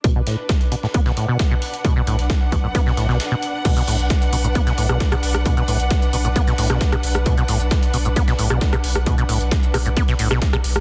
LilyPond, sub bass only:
\new Staff \with { instrumentName = "Sub bass" } { \clef bass \time 4/4 \key b \minor \tempo 4 = 133 r1 | r8 b,,16 b,,16 r8 b,,16 b,,16 r8 b,,16 b,,16 r4 | r8 b,,16 b,,16 r8 b,,16 b,,16 r8 b,,16 b,,16 r8 b,,16 b,,16 | r8 b,,16 b,,16 r8 b,,16 b,,16 r8 b,,16 b,,16 r8 b,,16 b,,16 |
r8 b,,16 b,,16 r8 b,,16 b,,16 r8 b,,16 b,,16 r8 b,,16 b,,16 | r8 b,,16 b,,16 r8 b,,16 b,,16 r8 b,,16 b,,16 r8 b,,16 b,,16 | }